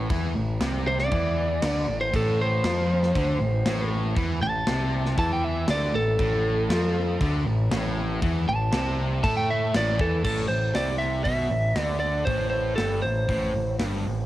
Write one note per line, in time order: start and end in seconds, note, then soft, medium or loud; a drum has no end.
0.10 0.34 E2 loud
0.10 0.35 E3 loud
0.10 kick loud
0.10 crash medium
0.36 0.59 A1 medium
0.36 0.56 A2 medium
0.61 1.08 C2 loud
0.61 1.11 C3 loud
0.61 snare loud
0.61 crash medium
0.87 0.99 C5 loud
0.99 1.98 D5 loud
0.99 snare soft
1.11 1.59 E2 medium
1.11 1.61 E3 loud
1.11 kick loud
1.11 crash medium
1.62 1.86 D2 loud
1.62 1.87 D3 medium
1.62 snare loud
1.62 crash medium
1.88 2.11 A1 medium
1.88 2.08 A2 medium
2.01 2.13 C5 medium
2.14 2.61 A1 medium
2.14 2.63 A2 loud
2.14 2.39 A4 medium
2.14 kick loud
2.14 crash medium
2.41 3.88 C5 loud
2.64 3.11 F2 medium
2.64 3.15 F3 loud
2.64 snare loud
2.64 crash medium
3.03 snare soft
3.15 3.39 D2 medium
3.15 3.40 D3 medium
3.15 kick loud
3.15 crash medium
3.40 3.64 A1 medium
3.40 3.61 A2 medium
3.66 4.13 A1 medium
3.66 4.16 A2 medium
3.66 snare loud
3.66 crash medium
4.16 4.40 E2 medium
4.16 4.41 E3 loud
4.16 kick loud
4.16 crash medium
4.41 4.66 A1 medium
4.41 4.62 A2 medium
4.41 5.16 A5 medium
4.67 5.14 C2 medium
4.67 5.17 C3 loud
4.67 snare loud
4.67 crash medium
5.06 snare soft
5.17 5.65 E2 medium
5.17 5.68 E3 loud
5.17 5.31 A5 loud
5.17 kick loud
5.17 crash medium
5.33 5.44 G5 medium
5.44 5.68 E5 loud
5.68 5.92 D2 loud
5.68 5.93 D3 loud
5.68 5.94 D5 medium
5.68 snare loud
5.68 crash medium
5.94 6.17 A1 medium
5.94 6.15 A2 medium
5.94 7.43 A4 loud
6.19 6.66 A1 medium
6.19 6.69 A2 loud
6.19 kick loud
6.19 crash medium
6.69 7.16 F2 loud
6.69 7.20 F3 loud
6.69 snare loud
6.69 crash medium
7.21 7.44 D2 medium
7.21 7.45 D3 loud
7.21 kick loud
7.21 crash medium
7.46 7.70 A1 medium
7.46 7.66 A2 medium
7.71 8.18 A1 loud
7.71 8.21 A2 loud
7.71 snare loud
7.71 crash medium
8.22 8.46 E2 loud
8.22 8.46 E3 loud
8.22 kick loud
8.22 crash medium
8.47 8.71 A1 medium
8.47 8.68 A2 medium
8.47 9.22 A5 medium
8.73 9.20 C2 loud
8.73 9.23 C3 loud
8.73 snare loud
8.73 crash medium
9.23 9.70 A2 medium
9.23 9.73 A3 loud
9.23 9.35 A5 loud
9.23 kick loud
9.23 crash medium
9.37 9.48 G5 loud
9.50 9.74 E5 loud
9.74 9.97 A1 loud
9.74 9.99 A2 loud
9.74 9.99 D5 loud
9.74 snare loud
9.74 crash medium
9.99 10.23 E2 medium
9.99 10.24 E3 loud
9.99 10.23 A4 loud
9.99 kick loud
10.24 10.48 A1 medium
10.24 10.48 A2 loud
10.24 10.48 A4 medium
10.24 kick loud
10.24 crash loud
10.48 10.73 A1 medium
10.48 10.70 A2 medium
10.48 10.75 C5 medium
10.75 11.22 C2 medium
10.75 11.25 C3 loud
10.75 10.98 D5 medium
10.75 snare loud
10.75 open hi-hat medium
10.98 11.23 E5 medium
11.24 11.49 B1 medium
11.24 11.50 B2 loud
11.24 11.82 E5 loud
11.24 kick medium
11.24 open hi-hat medium
11.51 11.75 A1 medium
11.51 11.71 A2 medium
11.76 12.23 D2 loud
11.76 12.26 D3 medium
11.76 snare loud
11.76 open hi-hat medium
11.82 11.99 D5 loud
12.00 12.24 D5 medium
12.25 12.74 A1 medium
12.25 12.77 A2 loud
12.25 12.49 C5 medium
12.25 kick loud
12.25 open hi-hat medium
12.50 12.75 C5 medium
12.76 13.02 G1 medium
12.76 13.02 G2 medium
12.76 13.02 A4 medium
12.76 snare loud
12.76 open hi-hat soft
13.02 13.27 A1 medium
13.02 13.24 A2 medium
13.02 13.75 C5 medium
13.28 13.52 A1 medium
13.28 13.53 A2 loud
13.28 kick medium
13.28 open hi-hat medium
13.54 13.78 A1 medium
13.54 13.74 A2 medium
13.79 14.04 G1 medium
13.79 14.04 G2 loud
13.79 snare loud
13.79 open hi-hat medium
14.05 14.26 A1 medium
14.05 14.25 A2 medium